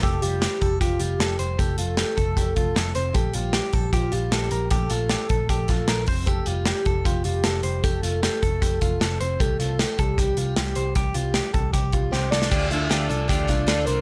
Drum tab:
CC |----------------|----------------|----------------|----------------|
HH |x-x-x-x-x-x-x-x-|x-x-x-x-x-x-x-x-|x-x-x-x-x-x-x-x-|x-x-x-x-x-x-x-o-|
SD |----o-------o---|----o-------o---|----o-------o---|----o-----o-o---|
BD |o-----o-o-------|o-----o-o-o-----|o-----o-o-------|o-----o-o-o---o-|

CC |----------------|----------------|----------------|----------------|
HH |x-x-x-x-x-x-x-x-|x-x-x-x-x-x-x-x-|x-x-x-x-x-x-x-x-|x-x-x-x-x-x-----|
SD |----o-------o---|----o-------o---|----o-------o---|----o-------o-oo|
BD |o-----o-o-------|o-----o-o-o-----|o-----o-o-------|o-----o-o-o-----|

CC |x---------------|
HH |--x-x-x-x-x-x-x-|
SD |----o-----o-o---|
BD |o-------o-o-----|